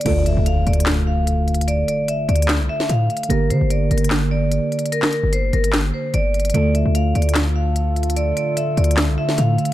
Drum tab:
CC |x-----------------------------------------------------------------------------------------------|------------------------------------------------------------------------------------------------|------------------------------------------------------------------------------------------------|------------------------------------------------------------------------------------------------|
HH |x-----------x-----------x-----------x---x---x---x-----------------------x-----------x---x---x---|x-----------x-----------x-----------x---x---x---x-----------------------x-----------x---x---x---|x-----------x-----------x-----------x---x---x---x-----------------------x-----------x---x---x---|x-----------x-----------x-----------x-----x-----x-----------------------x-----------x--x--x--x--|
CP |------------------------------------------------x-----------------------------------------------|------------------------------------------------x-----------------------------------------------|------------------------------------------------x-----------------------------------------------|------x-----------------------------------------x-----------------------------------------------|
SD |------------------------------------------------o-----------------------------------------------|------------------------------------------------o-----------------o-----------------------------|------------------------------------------------o-----------------------------------------------|------o-----------------------------------------o-----------------------------------------------|

CC |------------------------------------------------------------------------------------------------|------------------------------------------------------------------------------------------------|
HH |x-----------x-----------x-----------x---x---x---x-----------------------x-----------x---x---x---|x-----------x-----------x-----------x---x---x---x-----------------------x-----------x---x-------|
CP |------------------------------------------------x-----------------------------------------------|------------------------------------------------x-----------------------------------------------|
SD |------------------------------------------------o-----------------------------------------------|------------------------------------------------o-----------------o-----------------------------|